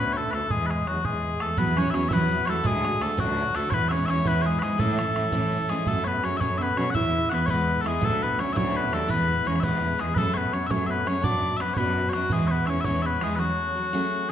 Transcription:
Already playing: D2 B3 B4
0.13 A4 C#5
0.17 A3
0.31 D2 A3 A4 B4, bodhran
0.49 E2 G#3 G#4, bodhran
0.61 G#3
0.66 B4
0.70 G#3 G#4, bodhran
0.86 E2 F#3 F#4, bodhran
1.03 E2 G#3 G#4, bodhran
1.39 E2 A3 A4, bodhran
1.57 E2 E3 F#3 B3 E4 F#4 B4, bodhran
1.76 F#3 B3 C#4 E4 F#4 C#5, bodhran
1.91 F#3 C#4 E5, bodhran
1.95 E2 B3 E4 F#4 C#5
2.09 E2 E3 F#3 B3 E4 F#4 E5, bodhran
2.13 B4
2.30 F#3 B3 E4 F#4
2.45 E2 F#3 A3 B3 E4 A4 C#5, bodhran
2.49 F#4
2.64 D2 A2 D3 G#3 A3 D4 F#4 G#4, bodhran
2.83 D3 A3 D4 F#4, bodhran
3.00 D2 D3 A3 D4 F#4 A4, bodhran
3.17 D2 A2 D3 F#3 A3 D4 F#4, bodhran
3.37 D3 A3 D4 F#4
3.54 D2 D3 A3 D4 F#4 A4, bodhran
3.70 E2 E3 G#3 B3 E4 B4 C#5, bodhran
3.89 E3 C#4 C#5 E5, bodhran
3.93 G#3 B3 E4
4.06 E2 E3 G#3 C#4 E5, bodhran
4.10 B3 E4 C#5
4.24 E2 E3 G#3 B3 E4 B4, bodhran
4.42 E3 G#3 C#5
4.46 B3 E4 G#4
4.59 G#2 E3 G#3 B3 G#4 B4, bodhran
4.64 E4
4.78 A2 E3 A3 C#4 E4 A4, bodhran
4.98 E3 A3 C#4 E4, bodhran
5.15 A2 E3 A3 C#4 E4, bodhran
5.32 A2 E3 A3 C#4 E4, bodhran
5.52 E3 A3 C#4 E4
5.69 G#2 E3 G#3 A3 C#4 E4 G#4, bodhran
5.86 F#2 F#3 A3 C#4 G#4 A4, bodhran
5.97 bodhran
6.04 B3 B4 C#5, bodhran
6.23 F#2 F#3 A3 C#4 G#4 C#5, bodhran
6.37 F#2 F#3 C#4 C#5 E5
6.41 A3 C#4 G#4, bodhran
6.58 B3 E5
6.62 B4
6.76 B2 F#3 A3 C#4 G#4 C#5, bodhran
6.90 E2 E3 F#5
6.94 G#3 B3 E4 E5, bodhran
7.04 bodhran
7.15 bodhran
7.29 E2 E3 G#3 B3 E4 F#5, bodhran
7.34 B4
7.46 E2 E3 G#3 B3 E4 C#5, bodhran
7.50 B4
7.81 E2 E3 G#3 A4
7.86 G#3 B3 E4 G#4, bodhran
8.00 D2 A2 F#3 A3 D4 E4, bodhran
8.05 A4
8.13 bodhran
8.23 B3 B4, bodhran
8.38 D2 F#3 A3 C#4 D4 E4 C#5, bodhran
8.53 D2 A2 F#3 A3 D4 E4 C#5 E5
8.57 C#4, bodhran
8.76 B3 B4
8.91 D#2 F#3 A3 D4 E4 A4, bodhran
9.08 E2 E3 G#3 B3 E4 B4, bodhran
9.20 bodhran
9.30 bodhran
9.44 E2 E3 G#3 B3 C#4 E4 C#5, bodhran
9.56 bodhran
9.60 E2 E3 G#3 B3 E4 B4 E5, bodhran
9.82 A3
9.98 E2 E3 G#3 B3 E4 G#4, bodhran
10.14 F#2 F#3 A3 C#4 G#4 A4 B4, bodhran
10.27 bodhran
10.34 B3 B4 C#5, bodhran
10.52 F#2 F#3 A3 C#4 G#4 C#5, bodhran
10.67 F#2 F#3 C#4 E5, bodhran
10.71 A3 G#4 C#5
10.87 B3 B4 E5
11.06 F#2 F#3 A3 C#4 G#4 C#5, bodhran
11.22 F#2 F#3 B3 D4 F#4 D5, bodhran
11.34 bodhran
11.43 bodhran
11.57 F#2 F#3 B3 E5, bodhran
11.61 D4 F#4 B4
11.74 F#2 B3 B4 C#5, bodhran
11.78 F#3 B3 D4 F#4
12.09 C#5
12.13 F#2 F#3 B3 D4 F#4, bodhran
12.30 E2 E3 G#3 B3 E4 G#4, bodhran
12.40 bodhran
12.47 B3 B4 C#5, bodhran
12.66 E2 E3 G#3 B3 C#4 E4 C#5 E5, bodhran
12.81 E2 E5, bodhran
12.85 E3 G#3 B3 C#4 E4 C#5
13.02 B3 B4 E5
13.21 E2 E3 G#3 B3 E4 G#4, bodhran
13.36 F#3 A3 C#4 F#4 G#4 B4
13.75 F#3 A3 C#4 G#4
13.93 F#3 A3 C#4 G#4
14.28 F#3

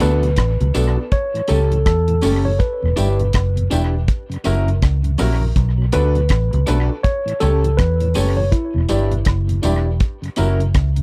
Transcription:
0.00 D2 A3 B3 D4 F#4 A4 B4, closed hi-hat, tambourine
0.23 B2 F#3, closed hi-hat
0.36 A1, kick, cross-stick, closed hi-hat, high woodblock
0.60 C#2 B2 F#3, closed hi-hat
0.74 B1 A3 B3 D4 F#4 A4, closed hi-hat, tambourine
0.97 D4 A4, muted clean electric guitar stroke
1.12 C#5, kick, closed hi-hat
1.34 A2 E3, closed hi-hat
1.48 C#2 G3 A3 C#4 G4 A4, closed hi-hat, tambourine
1.71 A2 E3, closed hi-hat
1.86 E2 A4, kick, cross-stick, closed hi-hat
2.08 A2 E3 G4 A4, closed hi-hat
2.21 F#1 G3 A3 C#4 G4 A4, open hi-hat, tambourine
2.45 A2 E3 C#5
2.59 B4, kick, closed hi-hat
2.83 E1 E2 B2
2.96 G1 G3 D4 E4 G4 B4, closed hi-hat, tambourine
3.19 E2 B2, closed hi-hat
3.33 F#1, kick, cross-stick, closed hi-hat, high woodblock
3.56 E2 B2, closed hi-hat
3.70 E1 G3 D4 E4 G4 B4, closed hi-hat, tambourine
3.94 E4 G4
4.08 kick, closed hi-hat
4.30 F#2 C#3, closed hi-hat
4.44 F#1 F#3 A#3 C#4 E4 F#4 A#4, closed hi-hat, tambourine
4.67 F#2 C#3, closed hi-hat
4.82 C#2, kick, cross-stick, closed hi-hat
5.03 F#2 C#3, closed hi-hat
5.18 A#1 F#3 A#3 C#4 E4 F#4 A#4, cross-stick, open hi-hat, tambourine
5.41 F#2 C#3
5.56 B1, kick, closed hi-hat
5.78 B2 F#3
5.92 D2 A3 B3 D4 F#4 A4 B4, closed hi-hat, tambourine
6.15 B2 F#3, closed hi-hat
6.29 A1, kick, cross-stick, closed hi-hat, high woodblock
6.53 C#2 B2 F#3, closed hi-hat
6.67 B1 A3 B3 D4 F#4 A4 B4, closed hi-hat, tambourine
6.89 A4 B4, muted clean electric guitar stroke
7.03 C#5, kick, closed hi-hat
7.26 A2 E3, closed hi-hat
7.40 C#2 G3 A3 C#4 G4 A4 C#5, closed hi-hat, tambourine
7.63 A2 E3, closed hi-hat
7.77 E2 B4, kick, cross-stick, closed hi-hat
8.00 A2 E3 A4 C#5, closed hi-hat
8.14 F#1 G3 A3 C#4 G4 A4 C#5, open hi-hat, tambourine
8.37 A2 E3 C#5
8.52 E4, kick, closed hi-hat
8.74 E1 E2 B2
8.89 G1 G3 D4 E4 G4 B4 D5, closed hi-hat, tambourine
9.11 E2 B2, closed hi-hat
9.25 F#1, kick, cross-stick, closed hi-hat, high woodblock
9.48 E2 B2, closed hi-hat
9.62 E1 G3 D4 E4 G4 B4 D5, closed hi-hat, tambourine
9.86 G4 D5
10.00 kick, closed hi-hat
10.22 F#2 C#3, closed hi-hat
10.36 F#1 F#3 A#3 C#4 E4 F#4 A#4, closed hi-hat, tambourine
10.59 F#2 C#3, closed hi-hat
10.75 C#2, kick, cross-stick, closed hi-hat
10.96 F#2 C#3, closed hi-hat

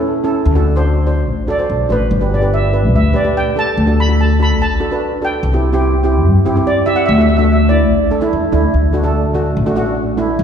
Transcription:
Already playing: C#4 E4 A4
0.24 C#4 E4 A4
0.45 D2
0.55 D4 F#4 A4
0.76 D4 F#4 C5
1.07 D4 F#4 C5
1.28 A1
1.47 D4 F#4 A4 D5
1.58 D4 F#4 C5
1.70 B1
1.89 A1 D4 F#4 B4 C5
2.11 G1
2.21 D4 G4 B4
2.34 D5
2.41 D4 G4 B4
2.54 E5
2.73 D4 G4 B4
2.93 D2 E5
3.13 D4 G4 B4 D5
3.24 D4 G4 B4
3.37 G5
3.56 D4 G4 A4 A5
3.77 D2
3.86 D4 F#4 A4
4.00 B5
4.08 D4 F#4 A4
4.21 A5
4.39 D4 F#4 A4 B5
4.60 A1 A5
4.80 D4 F#4 A4
4.91 D4 F#4 B4
5.22 D4 F#4 A4 G5
5.43 C2
5.53 C4 E4 G4
5.73 C4 E4 G4
6.03 C4 E4 G4
6.26 G2
6.45 C4 E4 G4
6.56 C4 E4 G4
6.67 D5
6.86 C4 E4 G4 E5
6.96 F#5
7.06 D2 E5
7.13 E5
7.18 A3 D4 F#4 E5
7.29 E5
7.37 A3 D4 F#4 E5
7.44 E5
7.52 E5
7.69 A3 D4 E4 D5
7.91 A1
8.11 A3 D4 A4
8.21 A3 D4 E4
8.33 E2
8.52 D2 A3 D4 E4
8.74 D2
8.93 A3 D4 F#4
9.03 A3 D4 A4
9.34 A3 D4 F#4
9.57 A1
9.66 A3 D4 F#4
9.76 A3 D4 F#4
10.17 A3 D4 E4
10.39 G1

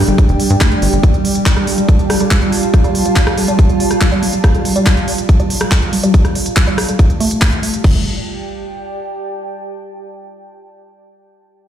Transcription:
Already playing: G3 D4 G4 D5 G5
0.08 G1 G3, closed hi-hat
0.18 kick, closed hi-hat
0.29 F1, closed hi-hat
0.40 G3, open hi-hat
0.50 G2, closed hi-hat
0.61 A3, kick, cross-stick, clap, closed hi-hat
0.72 closed hi-hat
0.82 G1 G4, open hi-hat
0.93 G1, closed hi-hat
1.03 G3 F4, kick, closed hi-hat
1.14 G3, closed hi-hat
1.25 open hi-hat
1.35 closed hi-hat
1.40 A5
1.46 G3, kick, clap, closed hi-hat
1.57 G3, cross-stick, closed hi-hat
1.67 G3, open hi-hat
1.78 G3, closed hi-hat
1.89 kick, closed hi-hat
1.99 closed hi-hat
2.10 G3, cross-stick, open hi-hat
2.20 G3, closed hi-hat
2.31 kick, clap, closed hi-hat
2.42 G3, closed hi-hat
2.52 open hi-hat
2.63 closed hi-hat
2.74 G3, kick, cross-stick, closed hi-hat
2.84 G3, closed hi-hat
2.95 G3, open hi-hat
3.06 G3, closed hi-hat
3.16 kick, clap, closed hi-hat
3.27 cross-stick, closed hi-hat
3.38 G3, open hi-hat
3.48 G3, closed hi-hat
3.59 G3, kick, closed hi-hat
3.69 G3, closed hi-hat
3.80 open hi-hat
3.91 cross-stick, closed hi-hat
4.01 G3, kick, clap, closed hi-hat
4.12 G3, closed hi-hat
4.23 G3, open hi-hat
4.33 G3, closed hi-hat
4.44 kick, cross-stick, closed hi-hat
4.55 closed hi-hat
4.65 G3, open hi-hat
4.76 G3, closed hi-hat
4.86 G3, kick, clap, closed hi-hat
4.97 G3, closed hi-hat
5.08 open hi-hat
5.18 closed hi-hat
5.29 G3, kick, closed hi-hat
5.40 G3, closed hi-hat
5.50 G3, open hi-hat
5.61 G3, cross-stick, closed hi-hat
5.72 kick, clap, closed hi-hat
5.82 closed hi-hat
5.93 G3, open hi-hat
6.03 G3, closed hi-hat
6.14 kick, closed hi-hat
6.25 G3, cross-stick, closed hi-hat
6.35 open hi-hat
6.46 closed hi-hat
6.57 G3, kick, clap, closed hi-hat
6.67 G3, closed hi-hat
6.78 G3, cross-stick, open hi-hat
6.89 G3, closed hi-hat
6.99 kick, closed hi-hat
7.10 closed hi-hat
7.20 A3, open hi-hat
7.31 closed hi-hat
7.42 A#3, kick, cross-stick, clap, open hi-hat
7.52 closed hi-hat
7.63 A3, open hi-hat
7.74 closed hi-hat
7.84 G1 G3 G4, kick, crash
7.91 D5
7.97 G5

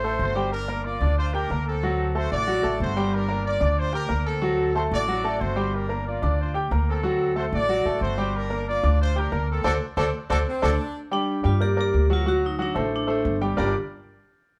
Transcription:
Already playing: A1 C5
0.04 A3 A4 C5
0.19 G1 F#4 C5
0.35 G3 G4 G5
0.52 D4 A#4
0.68 A#3 A#4 A#5
0.85 F4 D5
1.01 D2 D4 D5 D6
1.17 F4 C5
1.34 D4 G4 A#4 G5 G6
1.50 D2 A#3 A#4 A#5
1.67 C4 A4
1.83 F#3 F#4 F#5
2.15 A3 F#4 A4 C5 A5
2.32 A1 F#4 D5
2.47 F#3 F#4 F#5
2.63 A1 A3 A4 A5
2.80 G1 F#4 C5
2.96 G3 G4 G5
3.14 D4 A#4
3.28 A#3 A#4 A#5
3.46 F4 D5
3.60 D2 D4 D5 D6
3.78 F4 C5
3.93 D4 G4 A#4 G5 G6
4.09 D2 A#3 A#4 A#5
4.26 C4 A4
4.42 F#3 F#4 F#5
4.75 A3 F#4 A4 C5 A5
4.92 A1 F#4 D5
5.08 F#3 F#4 F#5
5.24 A3 A4 A5
5.41 G1 F#4 C5
5.56 G3 G4 G5
5.74 D4 A#4
5.89 A#3 A#4 A#5
6.07 F4 D5
6.22 D2 D4 D5 D6
6.40 F4 C5
6.54 G4 G5 G6
6.71 D2 A#3 A#4 A#5
6.89 C4 A4
7.03 F#3 F#4 F#5
7.36 A3 F#4 A4 C5 A5
7.53 A1 F#4 D5
7.69 F#3 F#4 F#5
7.85 A1 A3 A4 A5
8.01 G1 F#4 C5
8.18 G3 G4 G5
8.36 D4 A#4
8.50 A#3 A#4 A#5
8.67 F4 D5
8.83 D2 D4 D5 D6
9.01 F4 C5
9.16 D4 G4 A#4 G5 G6
9.32 D2 A#3 A#4 A#5
9.50 C4 A4
9.64 D2 D4 F#4 A4 C5 D5
9.97 D2 D4 F#4 A4 C5 D5
10.30 D2 D4 F#4 A4 C5 D5
10.47 C4
10.62 D2 D4 F#4 A4 C5 D5
11.11 G3 D4 G4 G5
11.43 G2 G3 F4 G4 G5
11.61 A#3 G4 A#4 D5
11.77 A#3 A#4 D5
11.81 G4
11.94 D2
12.10 F#3 F4 F#4 F#5
12.26 F#3 F#4 F#5
12.46 D#4
12.59 F#3 D4 F#4 F#5
12.74 A1 A3 A4 C5
12.96 D4
13.07 A3 D4 A4 C5
13.25 G1
13.41 G3 G4 G5
13.57 G1 G3 D4 F4 G4 A#4 D5

